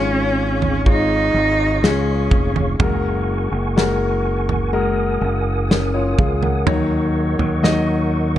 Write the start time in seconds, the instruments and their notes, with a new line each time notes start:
Already playing: fingered electric bass G#1, grand piano G#2 G#3 F4 C#5, cello C#4, tonewheel organ G#4 C#5 F5 C#6
0.62 floor tom
0.86 grand piano G#3 F4 C#5, cello D#4, kick
1.34 fingered electric bass G#1
1.83 fingered electric bass C#2, grand piano G#3 F4 G#4, snare
1.87 cello C#4
2.31 fingered electric bass F1, kick, floor tom
2.56 floor tom
2.79 fingered electric bass F#1, grand piano G#3 F#4 A#4, tonewheel organ A#4 F#5 G#5 C#6, kick, floor tom
3.52 fingered electric bass F#1
3.76 grand piano G#3 F#4 A#4, snare
4.49 floor tom
4.73 grand piano G#3 F#4 A#4, tonewheel organ D#6
5.21 fingered electric bass F#1
5.70 grand piano C#4 A#4, snare
5.94 grand piano F4 C#5
6.18 fingered electric bass C#2, grand piano G#4 F5, kick, floor tom
6.42 grand piano A#4 F#5, floor tom
6.66 fingered electric bass D#2, grand piano D#3 F#3 D#4 C#5, tonewheel organ D#5 C#6, floor tom
7.39 fingered electric bass D#2, floor tom
7.62 grand piano F#3 D#4 D#5, snare